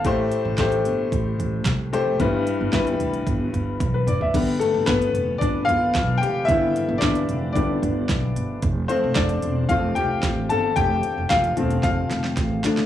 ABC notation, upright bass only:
X:1
M:4/4
L:1/16
Q:1/4=112
K:Gmix
V:1 name="Upright bass" clef=bass
A,,,2 z A,,, A,,,2 G,,,2 A,,,2 A,,,2 C,,2 F,,,2 | G,,,2 z G,,, G,,,2 F,,,2 G,,,2 G,,,2 B,,,2 F,,,2 | G,,,2 z G,,, G,,,2 F,,,2 G,,,2 G,,,2 B,,,2 F,,,2 | G,,,2 z G,,, G,,,2 F,,,2 G,,,2 G,,,2 B,,,2 G,,,2 |
F,,,2 z F,,, F,,,2 E,,,2 F,,,2 F,,,2 A,,,2 G,,,2 | F,,,2 z F,,, F,,,2 E,,,2 F,,,2 F,,,2 A,,,2 D,,2 |]